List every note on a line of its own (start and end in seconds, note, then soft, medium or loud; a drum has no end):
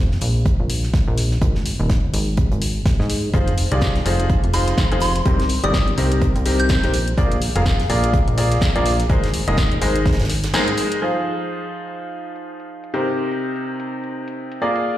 0.00 0.18 F1 loud
0.11 snare medium
0.21 0.54 A#1 medium
0.21 closed hi-hat medium
0.21 open hi-hat loud
0.46 kick loud
0.46 closed hi-hat medium
0.60 0.90 A#1 medium
0.70 closed hi-hat medium
0.70 open hi-hat loud
0.83 snare soft
0.94 kick loud
0.94 snare loud
0.94 closed hi-hat medium
1.08 1.38 A#1 loud
1.17 snare soft
1.17 closed hi-hat medium
1.17 open hi-hat loud
1.31 snare soft
1.42 1.74 G#1 loud
1.42 kick loud
1.42 closed hi-hat medium
1.55 snare soft
1.66 closed hi-hat medium
1.66 open hi-hat loud
1.80 2.10 D#1 loud
1.90 kick loud
1.90 snare loud
1.90 closed hi-hat medium
2.14 2.46 G#1 medium
2.14 closed hi-hat medium
2.14 open hi-hat loud
2.37 kick loud
2.37 closed hi-hat medium
2.52 2.82 G#1 medium
2.52 closed hi-hat soft
2.62 closed hi-hat medium
2.62 open hi-hat loud
2.86 kick loud
2.86 snare loud
2.86 closed hi-hat medium
2.86 open hi-hat medium
3.00 3.30 G#2 medium
3.00 snare soft
3.09 snare soft
3.09 closed hi-hat medium
3.09 open hi-hat loud
3.34 3.66 F1 loud
3.34 3.51 F3 medium
3.34 3.51 D#4 medium
3.34 3.51 F4 medium
3.34 3.51 G#4 medium
3.34 3.51 C5 medium
3.34 kick loud
3.34 closed hi-hat medium
3.48 closed hi-hat medium
3.58 closed hi-hat medium
3.58 open hi-hat loud
3.72 4.02 C2 loud
3.72 3.97 F3 medium
3.72 3.97 D#4 medium
3.72 3.97 F4 medium
3.72 3.97 G#4 medium
3.72 3.97 D5 medium
3.72 closed hi-hat medium
3.81 kick loud
3.81 snare loud
3.81 closed hi-hat medium
3.95 snare soft
3.95 closed hi-hat soft
4.06 4.38 F1 medium
4.06 4.31 F3 medium
4.06 4.31 D#4 medium
4.06 4.31 F4 medium
4.06 4.31 G#4 medium
4.06 4.31 C5 medium
4.06 closed hi-hat medium
4.06 open hi-hat loud
4.20 closed hi-hat medium
4.30 kick loud
4.30 closed hi-hat medium
4.44 4.74 F1 medium
4.44 closed hi-hat soft
4.53 4.79 F3 medium
4.53 4.79 D#4 medium
4.53 4.79 F4 medium
4.53 4.79 G#4 medium
4.53 4.79 C5 medium
4.53 4.68 C6 medium
4.53 closed hi-hat medium
4.53 open hi-hat loud
4.67 snare soft
4.67 closed hi-hat medium
4.77 kick loud
4.77 snare loud
4.77 closed hi-hat medium
4.92 5.22 F1 loud
4.92 5.06 F3 loud
4.92 5.06 D#4 medium
4.92 5.06 F4 medium
4.92 5.06 G#4 medium
4.92 5.06 C5 loud
4.92 closed hi-hat soft
5.00 5.16 C6 medium
5.00 snare soft
5.00 closed hi-hat medium
5.00 open hi-hat loud
5.15 snare soft
5.15 closed hi-hat medium
5.25 5.58 C2 loud
5.25 5.43 C3 medium
5.25 5.43 D#4 medium
5.25 5.43 G4 medium
5.25 5.43 A#4 medium
5.25 5.43 C5 medium
5.25 kick loud
5.25 closed hi-hat medium
5.40 snare medium
5.40 closed hi-hat medium
5.49 closed hi-hat medium
5.49 open hi-hat loud
5.64 5.94 G1 loud
5.64 5.89 C3 medium
5.64 5.89 D#4 medium
5.64 5.89 G4 medium
5.64 5.89 A#4 medium
5.64 5.89 D5 medium
5.64 5.75 D#6 medium
5.64 closed hi-hat medium
5.74 kick loud
5.74 snare loud
5.74 closed hi-hat medium
5.88 closed hi-hat soft
5.98 6.30 C2 medium
5.98 6.23 C3 medium
5.98 6.23 D#4 medium
5.98 6.23 G4 medium
5.98 6.23 A#4 medium
5.98 6.23 C5 medium
5.98 closed hi-hat medium
5.98 open hi-hat loud
6.12 closed hi-hat medium
6.22 kick loud
6.22 closed hi-hat medium
6.36 6.85 C2 medium
6.36 closed hi-hat soft
6.46 6.71 C3 medium
6.46 6.71 D#4 medium
6.46 6.71 G4 medium
6.46 6.71 A#4 medium
6.46 6.71 C5 medium
6.46 closed hi-hat medium
6.46 open hi-hat loud
6.60 6.99 G6 medium
6.60 closed hi-hat medium
6.69 kick loud
6.69 snare loud
6.69 closed hi-hat medium
6.69 open hi-hat medium
6.83 7.14 A#1 loud
6.83 6.92 D#4 medium
6.83 6.92 G4 medium
6.83 6.92 A#4 medium
6.83 6.92 C5 loud
6.83 snare soft
6.83 closed hi-hat medium
6.94 snare soft
6.94 closed hi-hat medium
6.94 open hi-hat loud
7.08 closed hi-hat medium
7.18 7.50 A#1 loud
7.18 7.35 A#3 medium
7.18 7.35 F4 medium
7.18 7.35 G#4 medium
7.18 7.35 A#4 medium
7.18 7.35 D5 medium
7.18 kick loud
7.18 closed hi-hat medium
7.32 closed hi-hat medium
7.42 closed hi-hat medium
7.42 open hi-hat loud
7.56 7.86 F1 loud
7.56 7.81 A#3 medium
7.56 7.81 F4 medium
7.56 7.81 G#4 medium
7.56 7.81 A#4 medium
7.56 7.81 F5 medium
7.56 closed hi-hat medium
7.66 kick loud
7.66 snare loud
7.66 closed hi-hat medium
7.80 snare medium
7.80 closed hi-hat soft
7.90 8.22 A#1 medium
7.90 8.15 A#3 medium
7.90 8.15 F4 medium
7.90 8.15 G#4 medium
7.90 8.15 A#4 medium
7.90 8.15 D5 medium
7.90 closed hi-hat medium
7.90 open hi-hat loud
8.04 closed hi-hat medium
8.14 kick loud
8.14 closed hi-hat medium
8.28 8.58 A#1 medium
8.28 closed hi-hat soft
8.38 8.63 A#3 medium
8.38 8.63 F4 medium
8.38 8.63 G#4 medium
8.38 8.63 A#4 medium
8.38 8.63 D5 medium
8.38 closed hi-hat medium
8.38 open hi-hat loud
8.51 snare soft
8.51 closed hi-hat medium
8.61 kick loud
8.61 snare loud
8.61 closed hi-hat medium
8.76 9.06 A#1 loud
8.76 8.90 A#3 medium
8.76 8.90 F4 medium
8.76 8.90 G#4 medium
8.76 8.90 A#4 medium
8.76 8.90 D5 loud
8.76 closed hi-hat medium
8.86 snare soft
8.86 closed hi-hat medium
8.86 open hi-hat loud
8.99 snare soft
8.99 closed hi-hat medium
9.10 9.42 G#1 loud
9.10 9.27 G#3 medium
9.10 9.27 D#4 medium
9.10 9.27 G#4 medium
9.10 9.27 A#4 medium
9.10 9.27 C5 medium
9.10 kick loud
9.10 closed hi-hat medium
9.24 snare medium
9.24 closed hi-hat medium
9.34 closed hi-hat medium
9.34 open hi-hat loud
9.48 9.78 D#1 loud
9.48 9.73 G#3 medium
9.48 9.73 D#4 medium
9.48 9.73 G#4 medium
9.48 9.73 A#4 medium
9.48 9.73 D#5 medium
9.48 closed hi-hat medium
9.57 kick loud
9.57 snare loud
9.57 closed hi-hat medium
9.72 closed hi-hat soft
9.82 10.14 G#1 medium
9.82 10.07 G#3 medium
9.82 10.07 D#4 medium
9.82 10.07 G#4 medium
9.82 10.07 A#4 medium
9.82 10.07 C5 medium
9.82 closed hi-hat medium
9.82 open hi-hat loud
9.96 closed hi-hat medium
10.06 kick loud
10.06 snare medium
10.06 closed hi-hat medium
10.13 snare medium
10.13 closed hi-hat medium
10.20 10.50 G#1 medium
10.20 snare medium
10.20 closed hi-hat soft
10.20 closed hi-hat medium
10.24 snare medium
10.24 closed hi-hat medium
10.29 snare loud
10.29 closed hi-hat medium
10.29 open hi-hat loud
10.44 snare loud
10.44 closed hi-hat medium
10.54 10.99 G#3 medium
10.54 10.99 D#4 medium
10.54 10.99 G#4 medium
10.54 10.99 A#4 medium
10.54 10.99 C5 loud
10.54 snare loud
10.54 closed hi-hat medium
10.54 open hi-hat medium
10.68 closed hi-hat medium
10.77 closed hi-hat medium
10.77 open hi-hat loud
10.92 closed hi-hat medium
11.02 12.91 F3 medium
11.02 12.91 D#4 medium
11.02 12.91 F4 medium
11.02 12.91 G#4 medium
11.02 12.91 C5 medium
11.40 closed hi-hat medium
11.64 closed hi-hat soft
11.88 closed hi-hat medium
12.12 closed hi-hat soft
12.36 closed hi-hat medium
12.60 closed hi-hat medium
12.84 closed hi-hat medium
12.94 14.59 C3 medium
12.94 14.59 D#4 medium
12.94 14.59 G4 medium
12.94 14.59 A#4 medium
12.94 14.59 C5 medium
13.08 closed hi-hat medium
13.32 closed hi-hat medium
13.56 closed hi-hat soft
13.80 closed hi-hat medium
14.04 closed hi-hat soft
14.28 closed hi-hat medium
14.52 closed hi-hat medium
14.62 14.98 A#3 medium
14.62 14.98 F4 medium
14.62 14.98 G#4 medium
14.62 14.98 A#4 medium
14.62 14.98 D5 medium
14.76 closed hi-hat medium